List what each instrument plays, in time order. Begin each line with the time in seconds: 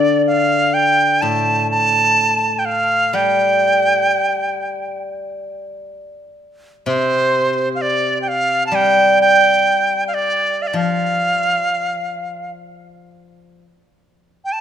Already playing: guzheng D3, dizi D5
0.27 dizi F5
0.74 dizi G5
1.21 guzheng A2, dizi A5
1.71 dizi A5
2.59 dizi G5
2.65 dizi F5
3.13 guzheng G3, dizi G5
6.86 guzheng C3, dizi C5
7.75 dizi F5
7.82 dizi D5
8.22 dizi G5
8.28 dizi F5
8.67 dizi A5
8.72 guzheng G3, dizi G5
9.22 dizi G5
10.08 dizi F5
10.15 dizi D5
10.62 dizi F5
10.67 dizi D5
10.73 guzheng F3, dizi F5
14.45 dizi G5
14.52 dizi A5